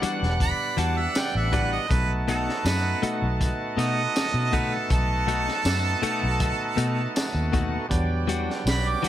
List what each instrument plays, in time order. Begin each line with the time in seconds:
Already playing: tonewheel organ G3 B3 D4 F#5, horn section D5 F#5
0.02 clean electric guitar E3 G3 D4 F#4, muted fingered electric bass stroke, closed hi-hat
0.22 fingered electric bass E1, snare
0.40 harmonica B5, kick, closed hi-hat
0.77 fingered electric bass E2, clean electric guitar E3 G3 D4 F#4, harmonica A5, closed hi-hat
0.98 harmonica E5
1.15 harmonica G5, snare, closed hi-hat, tambourine
1.35 fingered electric bass A1, harmonica E5
1.53 clean electric guitar E3 G3 D4 F#4, harmonica B4, kick, closed hi-hat
1.73 harmonica D#5
1.89 fingered electric bass B1, tonewheel organ A3 B3 D#4 F#4, horn section B4 D#5 A5, harmonica B4, kick, closed hi-hat
2.28 clean electric guitar B2 A3 D#4 F#4, harmonica A4, closed hi-hat
2.49 snare
2.65 fingered electric bass F#2, harmonica B4, snare, closed hi-hat, tambourine
3.02 clean electric guitar B2 A3 D#4 F#4, muted fingered electric bass stroke, closed hi-hat
3.22 fingered electric bass B1
3.41 kick, closed hi-hat
3.77 clean electric guitar B2 A3 D#4 F#4, fingered electric bass B2, harmonica D#5, closed hi-hat
4.16 snare, closed hi-hat, tambourine
4.34 fingered electric bass B2
4.52 clean electric guitar B2 A3 D#4 F#4, harmonica B4, kick, closed hi-hat
4.74 harmonica A4
4.90 fingered electric bass B1, harmonica A4, kick, closed hi-hat
5.27 clean electric guitar B2 A3 D#4 F#4, closed hi-hat
5.48 snare
5.65 fingered electric bass F#2, snare, closed hi-hat, tambourine
6.02 clean electric guitar B2 A3 D#4 F#4, muted fingered electric bass stroke, closed hi-hat
6.23 fingered electric bass B1
6.40 kick, closed hi-hat
6.76 clean electric guitar B2 A3 D#4 F#4, fingered electric bass B2, closed hi-hat
7.16 snare, closed hi-hat, tambourine
7.34 fingered electric bass D#2
7.52 clean electric guitar B2 A3 D#4 F#4, kick, closed hi-hat
7.89 fingered electric bass E2, tonewheel organ F#3 G3 B3 D4, horn section D5 G5, kick, closed hi-hat
8.28 clean electric guitar E3 G3 D4 F#4, closed hi-hat
8.50 snare
8.66 fingered electric bass B1, harmonica B5, snare, closed hi-hat, tambourine
8.88 harmonica D6
9.03 clean electric guitar E3 G3 D4 F#4, muted fingered electric bass stroke, closed hi-hat